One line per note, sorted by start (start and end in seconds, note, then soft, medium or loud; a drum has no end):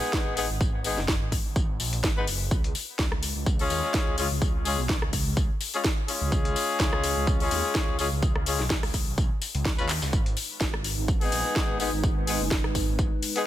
0.00 0.34 G#3 medium
0.00 0.34 B3 medium
0.00 0.34 D#4 medium
0.00 0.34 G#4 medium
0.00 snare medium
0.13 kick loud
0.13 snare loud
0.13 tambourine medium
0.26 0.48 G#1 loud
0.37 0.46 G#3 medium
0.37 0.46 B3 medium
0.37 0.46 D#4 medium
0.37 0.46 G#4 loud
0.37 open hi-hat loud
0.37 tambourine medium
0.50 0.95 G#1 medium
0.61 kick loud
0.61 tambourine medium
0.84 0.99 G#3 medium
0.84 0.99 B3 medium
0.84 0.99 D#4 medium
0.84 0.99 G#4 medium
0.84 open hi-hat loud
0.84 tambourine medium
0.97 1.19 F#1 loud
0.97 snare soft
1.08 kick loud
1.08 snare loud
1.08 tambourine medium
1.21 1.43 G#1 loud
1.32 kick medium
1.32 open hi-hat loud
1.32 tambourine medium
1.45 1.67 G#1 loud
1.56 kick loud
1.56 tambourine medium
1.69 1.78 G#1 medium
1.80 2.02 A#1 medium
1.80 open hi-hat loud
1.80 tambourine medium
1.93 closed hi-hat soft
2.04 2.26 G#1 medium
2.04 kick loud
2.04 snare loud
2.04 tambourine medium
2.17 2.25 G#3 medium
2.17 2.25 B3 medium
2.17 2.25 D#4 medium
2.17 2.25 B4 loud
2.27 2.50 F#1 loud
2.27 open hi-hat loud
2.27 tambourine medium
2.51 2.73 C#2 loud
2.51 kick loud
2.51 tambourine medium
2.64 closed hi-hat soft
2.75 open hi-hat loud
2.75 tambourine medium
2.99 3.34 C#2 loud
2.99 kick loud
2.99 snare loud
2.99 tambourine medium
3.12 cross-stick medium
3.23 open hi-hat loud
3.23 tambourine medium
3.36 3.69 C#2 loud
3.46 kick loud
3.46 tambourine medium
3.59 4.15 G#3 medium
3.59 4.15 C#4 medium
3.59 4.15 F4 medium
3.59 4.15 G#4 medium
3.59 open hi-hat medium
3.70 3.81 D#2 medium
3.70 open hi-hat loud
3.70 tambourine medium
3.83 snare medium
3.94 kick loud
3.94 snare loud
3.94 tambourine medium
4.07 4.29 C#2 loud
4.18 4.27 G#3 medium
4.18 4.27 C#4 medium
4.18 4.27 F4 medium
4.18 4.27 G#4 medium
4.18 open hi-hat loud
4.18 tambourine medium
4.31 4.76 C#2 loud
4.42 kick loud
4.42 tambourine medium
4.65 4.80 G#3 medium
4.65 4.80 C#4 medium
4.65 4.80 F4 medium
4.65 4.80 G#4 medium
4.65 open hi-hat loud
4.65 tambourine medium
4.78 5.00 B1 medium
4.89 kick loud
4.89 snare loud
4.89 tambourine medium
5.02 5.24 C#2 medium
5.02 cross-stick medium
5.13 kick medium
5.13 open hi-hat loud
5.13 tambourine medium
5.26 5.48 C#2 loud
5.37 kick loud
5.37 tambourine medium
5.61 open hi-hat loud
5.61 tambourine medium
5.74 5.82 G#3 medium
5.74 5.82 C#4 medium
5.74 5.82 F4 medium
5.74 5.82 G#4 loud
5.74 closed hi-hat soft
5.84 kick loud
5.84 snare loud
5.84 tambourine medium
6.08 7.37 G#3 medium
6.08 7.37 C#4 medium
6.08 7.37 F4 medium
6.08 7.37 G#4 medium
6.08 open hi-hat loud
6.08 tambourine medium
6.21 6.30 C#2 loud
6.32 6.54 C#2 medium
6.32 kick loud
6.32 tambourine medium
6.45 closed hi-hat soft
6.56 open hi-hat loud
6.56 tambourine medium
6.80 7.14 C#2 loud
6.80 kick loud
6.80 snare loud
6.80 tambourine medium
6.93 cross-stick medium
7.04 open hi-hat loud
7.04 tambourine medium
7.16 7.49 C#2 loud
7.27 kick loud
7.27 tambourine medium
7.40 7.96 G#3 medium
7.40 7.96 C#4 medium
7.40 7.96 F4 medium
7.40 7.96 G#4 medium
7.40 open hi-hat medium
7.51 7.62 D#2 medium
7.51 open hi-hat loud
7.51 tambourine medium
7.64 snare medium
7.75 kick loud
7.75 snare loud
7.75 tambourine medium
7.88 8.10 C#2 loud
7.99 8.08 G#3 medium
7.99 8.08 C#4 medium
7.99 8.08 F4 medium
7.99 8.08 G#4 loud
7.99 open hi-hat loud
7.99 tambourine medium
8.12 8.57 C#2 loud
8.23 kick loud
8.23 tambourine medium
8.36 cross-stick medium
8.46 8.61 G#3 medium
8.46 8.61 C#4 medium
8.46 8.61 F4 medium
8.46 8.61 G#4 medium
8.46 open hi-hat loud
8.46 tambourine medium
8.59 8.81 B1 medium
8.59 snare soft
8.70 kick loud
8.70 snare loud
8.70 tambourine medium
8.83 9.05 C#2 loud
8.83 cross-stick medium
8.83 open hi-hat medium
8.94 kick medium
8.94 open hi-hat loud
8.94 tambourine medium
9.07 9.29 B1 loud
9.18 kick loud
9.18 tambourine medium
9.42 open hi-hat loud
9.42 tambourine medium
9.55 9.76 C#2 medium
9.55 closed hi-hat soft
9.65 kick loud
9.65 snare loud
9.65 tambourine medium
9.78 10.00 D#2 loud
9.78 9.86 G#3 medium
9.78 9.86 C#4 medium
9.78 9.86 F4 medium
9.78 9.86 B4 loud
9.78 tambourine medium
9.89 snare loud
9.89 clap medium
9.89 open hi-hat loud
9.89 tambourine medium
10.02 10.11 C#2 loud
10.02 snare loud
10.02 tambourine medium
10.13 10.35 G#1 loud
10.13 13.47 G#3 medium
10.13 13.47 D#4 medium
10.13 13.47 B4 medium
10.13 kick loud
10.13 tambourine medium
10.26 closed hi-hat soft
10.37 open hi-hat loud
10.37 tambourine medium
10.61 10.95 G#1 loud
10.61 kick loud
10.61 snare loud
10.61 tambourine medium
10.74 cross-stick medium
10.84 open hi-hat loud
10.84 tambourine medium
10.98 11.30 G#1 loud
11.08 kick loud
11.08 tambourine medium
11.21 11.77 G#3 medium
11.21 11.77 B3 medium
11.21 11.77 D#4 medium
11.21 11.77 G#4 medium
11.21 open hi-hat medium
11.32 11.43 A#1 medium
11.32 open hi-hat loud
11.32 tambourine medium
11.45 snare medium
11.56 kick loud
11.56 snare loud
11.56 tambourine medium
11.69 11.91 G#1 loud
11.80 11.89 G#3 medium
11.80 11.89 B3 medium
11.80 11.89 D#4 medium
11.80 11.89 G#4 medium
11.80 open hi-hat loud
11.80 tambourine medium
11.93 12.38 G#1 loud
12.04 kick loud
12.04 tambourine medium
12.27 12.42 G#3 medium
12.27 12.42 B3 medium
12.27 12.42 D#4 medium
12.27 12.42 G#4 medium
12.27 open hi-hat loud
12.27 tambourine medium
12.41 12.62 F#1 loud
12.51 kick loud
12.51 snare loud
12.51 tambourine medium
12.64 12.86 G#1 loud
12.64 cross-stick medium
12.75 kick medium
12.75 open hi-hat loud
12.75 tambourine medium
12.88 13.10 G#1 loud
12.99 kick loud
12.99 tambourine medium
13.22 open hi-hat loud
13.22 tambourine medium
13.36 13.44 G#3 loud
13.36 13.44 B3 medium
13.36 13.44 D#4 medium
13.36 13.44 G#4 loud
13.36 closed hi-hat soft